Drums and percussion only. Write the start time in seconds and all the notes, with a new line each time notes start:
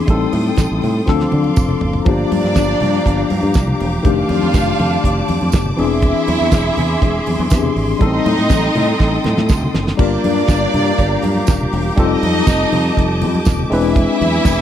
0.07 kick, closed hi-hat, muted conga
0.33 open hi-hat, muted conga, high conga
0.56 kick, snare, closed hi-hat, tambourine, muted conga
0.82 open hi-hat, low conga
1.07 kick, snare, muted conga
1.20 snare
1.32 high tom, high conga
1.44 high conga
1.56 kick, mid tom, tambourine, muted conga
1.69 mid tom, low conga
1.81 floor tom
1.93 floor tom
2.06 kick, closed hi-hat, muted conga
2.32 open hi-hat, high conga
2.45 snare
2.55 kick, snare, closed hi-hat, tambourine, high conga
2.80 open hi-hat, low conga
3.06 kick, closed hi-hat, muted conga
3.30 open hi-hat, high conga
3.43 high conga
3.54 kick, snare, closed hi-hat, tambourine
3.67 low conga
3.80 open hi-hat, muted conga
4.05 kick, closed hi-hat, muted conga
4.29 open hi-hat, muted conga, high conga
4.53 kick, snare, closed hi-hat, tambourine, muted conga, high conga
4.80 open hi-hat, muted conga, low conga
5.04 kick, closed hi-hat
5.28 open hi-hat, muted conga, high conga
5.41 high conga
5.52 kick, snare, closed hi-hat, tambourine
5.66 low conga
5.78 open hi-hat, muted conga
6.02 kick, closed hi-hat, muted conga
6.27 open hi-hat, muted conga, high conga
6.41 snare
6.51 kick, snare, closed hi-hat, tambourine, high conga
6.77 open hi-hat, muted conga, low conga
7.02 kick, closed hi-hat, muted conga
7.26 open hi-hat, high conga
7.40 high conga
7.50 kick, snare, closed hi-hat, tambourine
7.63 low conga
7.76 open hi-hat
8.01 kick, closed hi-hat, muted conga
8.26 open hi-hat, muted conga, high conga
8.49 kick, snare, closed hi-hat, tambourine, muted conga, high conga
8.75 open hi-hat, low conga
9.00 kick, snare, muted conga
9.24 snare, muted conga, high conga
9.37 snare, high conga
9.49 kick, snare, tambourine, muted conga
9.62 low conga
9.74 snare, muted conga
9.87 snare
9.99 kick, crash
10.24 open hi-hat, muted conga, high conga
10.48 kick, snare, closed hi-hat, tambourine
10.74 open hi-hat, muted conga, low conga
10.98 kick, closed hi-hat, muted conga
11.22 open hi-hat, muted conga, high conga
11.36 high conga
11.47 kick, snare, closed hi-hat, tambourine
11.61 low conga
11.73 open hi-hat, muted conga
11.97 kick, closed hi-hat
12.23 open hi-hat, muted conga, high conga
12.46 kick, snare, closed hi-hat, tambourine, muted conga
12.72 open hi-hat, muted conga, low conga
12.97 kick, closed hi-hat
13.21 open hi-hat, muted conga, high conga
13.35 high conga
13.45 kick, snare, closed hi-hat, tambourine
13.59 low conga
13.72 open hi-hat, muted conga
13.96 kick, closed hi-hat, muted conga
14.21 open hi-hat, high conga
14.44 kick, snare, closed hi-hat, tambourine, muted conga